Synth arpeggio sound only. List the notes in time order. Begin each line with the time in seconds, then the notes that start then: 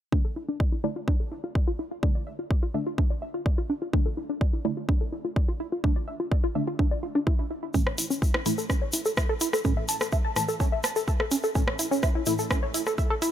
0.12 D4
0.25 A4
0.36 E4
0.49 D4
0.60 D5
0.72 E4
0.84 E4
0.96 F4
1.08 D4
1.20 A4
1.32 E4
1.44 F4
1.55 D5
1.68 F4
1.79 E4
1.91 F4
2.03 D4
2.15 D5
2.27 E5
2.39 F4
2.50 D5
2.63 F4
2.74 E5
2.87 F4
2.98 D4
3.10 D5
3.22 E5
3.34 F4
3.46 D5
3.58 F4
3.70 D4
3.82 F4
3.93 D4
4.06 A4
4.17 E4
4.29 D4
4.41 D5
4.53 E4
4.65 E4
4.77 F4
4.89 D4
5.01 A4
5.12 E4
5.25 F4
5.36 D5
5.48 F4
5.60 E4
5.72 F4
5.84 D4
5.96 D5
6.08 E5
6.20 F4
6.31 D5
6.44 F4
6.55 E5
6.68 F4
6.79 D4
6.91 D5
7.03 F4
7.15 D4
7.27 E4
7.39 E4
7.51 E4
7.63 E4
7.74 C#4
7.87 C#5
7.98 E4
8.10 C#4
8.22 E5
8.34 E4
8.46 E4
8.58 A4
8.69 C#4
8.82 C#5
8.93 E4
9.06 A4
9.17 E5
9.29 A4
9.41 E4
9.53 A4
9.65 C#4
9.77 E5
9.89 A5
10.01 A4
10.12 E5
10.25 A5
10.36 A5
10.48 A4
10.60 C#4
10.72 E5
10.84 A5
10.96 A4
11.08 E5
11.20 A4
11.31 C#4
11.44 A4
11.55 C#4
11.68 C#5
11.79 E4
11.91 C#4
12.03 E5
12.15 E4
12.27 E4
12.39 A4
12.51 C#4
12.63 C#5
12.74 E4
12.87 A4
12.98 E5
13.10 A4
13.22 E4